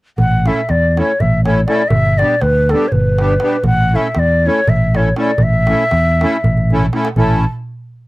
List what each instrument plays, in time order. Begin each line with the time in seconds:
0.18 fingered electric bass A1, ney F#5, darbuka dum
0.32 darbuka tek
0.46 accordion A3 C#4 E4 A4, ney E5, darbuka tek
0.57 darbuka tek
0.69 fingered electric bass E2, ney D5, darbuka tek
0.84 darbuka tek
0.91 ney D5
0.97 accordion A3 C#4 E4 A4, ney C#5, darbuka tek
1.20 fingered electric bass A1, ney E5, darbuka dum
1.45 accordion A3 C#4 E4 A4, ney C#5, darbuka tek
1.66 accordion A3 C#4 E4 A4, ney D5, darbuka tek
1.88 fingered electric bass G1, ney E5, darbuka dum
2.06 darbuka tek
2.18 accordion G3 B3, ney D5, darbuka tek
2.22 accordion D4 G4
2.30 darbuka tek
2.41 fingered electric bass D2, ney B4, darbuka tek
2.56 darbuka tek
2.69 accordion G3 B3 D4, ney A4, darbuka tek
2.74 accordion G4
2.88 ney C#5
2.92 fingered electric bass G1, ney B4, darbuka dum
3.18 accordion G3 B3 D4 G4, darbuka tek
3.40 accordion G3 B3 D4 G4, darbuka tek
3.53 darbuka tek
3.64 fingered electric bass A1, ney F#5, darbuka dum
3.78 darbuka tek
3.93 accordion A3 C#4 E4 A4, ney E5
4.04 darbuka tek
4.15 fingered electric bass E2, darbuka tek
4.19 ney D5
4.30 darbuka tek
4.46 accordion A3 C#4 E4 A4, ney C#5
4.67 fingered electric bass A1, ney E5, darbuka dum
4.94 accordion A3 C#4 E4 A4, ney C#5, darbuka tek
5.16 accordion A3 C#4 E4 A4, ney D5, darbuka tek
5.28 darbuka tek
5.38 fingered electric bass A1, darbuka dum
5.43 ney E5
5.53 darbuka tek
5.67 accordion A3 C#4 E4 A4, darbuka tek
5.91 fingered electric bass E2, darbuka tek
6.06 darbuka tek
6.21 accordion A3 C#4 E4 A4, darbuka tek
6.33 darbuka tek
6.44 fingered electric bass A1, darbuka dum
6.57 darbuka dum
6.70 accordion A3 C#4 E4 A4, darbuka dum
6.82 darbuka dum
6.93 accordion A3 C#4 E4 A4, darbuka tek
7.05 darbuka tek
7.16 fingered electric bass A1, accordion A3 C#4 E4 A4, ney A5, darbuka dum